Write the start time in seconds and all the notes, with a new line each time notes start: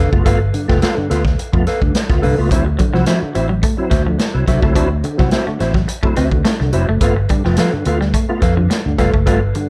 Already playing: F1 G2 D3 A4 B4
0.00 F5
0.12 F#1 A3 B3 F4, muted clean electric guitar stroke, kick
0.25 G1 A3 B3 F4 A4 B4 F5, kick, closed hi-hat
0.41 muted clean electric guitar stroke
0.53 G2 D3, muted clean electric guitar stroke, closed hi-hat
0.68 F1 A3 B3 F4 A4 B4 G5, kick, snare
0.82 B3 F4 A4 B4 F5, snare, closed hi-hat
0.97 G2 D3, muted clean electric guitar stroke, muted fingered electric bass stroke
1.10 D2 B3 F4 A4 B4 F5, snare, closed hi-hat
1.25 muted clean electric guitar stroke, kick, snare
1.39 muted clean electric guitar stroke, muted fingered electric bass stroke, closed hi-hat
1.52 F2 A3 B3 F4, muted clean electric guitar stroke, kick
1.67 A4 B4 F5, snare, closed hi-hat
1.82 D2 G2 D3, kick
1.95 muted clean electric guitar stroke, snare, closed hi-hat
2.09 D2 A3 B3 F4, muted clean electric guitar stroke, kick, snare
2.22 C2 G2 D3 A4 B4 F5, open hi-hat
2.38 C#2 A3 B3 F4, muted clean electric guitar stroke
2.51 D2 F#3 C4 E4 F#4 C5 E5, kick, closed hi-hat
2.66 muted clean electric guitar stroke
2.78 D3 F#3, muted clean electric guitar stroke, kick, closed hi-hat
2.94 C2 F3 F#3 C4 E4 F#4 C5 F#5, snare
3.06 F3 C4 E4 F#4 C5 E5, snare, closed hi-hat
3.22 D3, muted clean electric guitar stroke, muted fingered electric bass stroke
3.35 A1 C4 E4 F#4 C5 E5, muted clean electric guitar stroke, closed hi-hat
3.49 F#3, muted clean electric guitar stroke
3.62 A3, muted clean electric guitar stroke, kick, closed hi-hat
3.77 F#3 C4 E4, muted clean electric guitar stroke
3.90 D2 F#4 C5 E5, muted clean electric guitar stroke, kick, snare, closed hi-hat
4.05 D3 F3, muted clean electric guitar stroke
4.18 muted clean electric guitar stroke, snare, closed hi-hat
4.34 C2 F#3 C4 E4, muted clean electric guitar stroke
4.47 C2 D3 F#3 F#4 C5 E5, kick, snare, closed hi-hat
4.62 C#2 F#3 A3 C4 E4, muted clean electric guitar stroke, kick
4.75 D2 F#3 C4 D4 E4 F#4 C5 E5, kick, closed hi-hat
5.04 D3, muted clean electric guitar stroke, closed hi-hat
5.18 C2 F#3 C4 E4 F#4 C5 F#5, kick, snare
5.30 C4 E4 F#4 C5 E5, snare, closed hi-hat
5.46 D3 A3, muted clean electric guitar stroke, muted fingered electric bass stroke
5.59 A1 C4 E4 F#4 C5 E5, muted clean electric guitar stroke, snare, closed hi-hat
5.74 F#3, kick, snare
5.88 muted clean electric guitar stroke, closed hi-hat
6.03 F#3 A3 C4 E4, muted clean electric guitar stroke, kick
6.16 D2 C4 F#4 C5 E5, snare, closed hi-hat
6.31 D3, muted clean electric guitar stroke, kick
6.45 A3 C4 E4, muted clean electric guitar stroke, snare, closed hi-hat
6.59 C2 D3, muted clean electric guitar stroke, snare
6.73 F1 F#3 C4 E4 F#4 C5 E5, closed hi-hat
6.88 F#1 A3, muted clean electric guitar stroke
7.01 G1 A3 B3 F4 A4 B4 F5, kick, closed hi-hat
7.17 muted clean electric guitar stroke
7.29 G2 D3 G3, muted clean electric guitar stroke, kick, closed hi-hat
7.44 F1 F3 A3 B3 F4 A4 B4 G5, snare
7.56 F3 B3 F4 A4 B4 F5, snare, closed hi-hat
7.73 G2 D3, muted clean electric guitar stroke, muted fingered electric bass stroke
7.85 D2 B3 F4 A4 B4 F5, muted clean electric guitar stroke, closed hi-hat
8.01 G3, muted clean electric guitar stroke, snare
8.14 A3, muted clean electric guitar stroke, kick, closed hi-hat
8.29 A3 B3 F4, muted clean electric guitar stroke
8.42 F2 A4 B4 F5, muted clean electric guitar stroke, kick, snare, closed hi-hat
8.57 G2 D3 F3, muted clean electric guitar stroke
8.70 B3 F4, muted clean electric guitar stroke, snare, closed hi-hat
8.85 D2 G2 D3, muted clean electric guitar stroke
8.98 F1 G3 A3 B3 F4 A4 B4 F5, kick, snare, closed hi-hat
9.13 F#1 A3, muted clean electric guitar stroke, kick
9.26 G1 G3 A3 B3 F4 A4 B4 F5, kick, closed hi-hat
9.42 muted clean electric guitar stroke
9.55 G2 D3, muted clean electric guitar stroke, closed hi-hat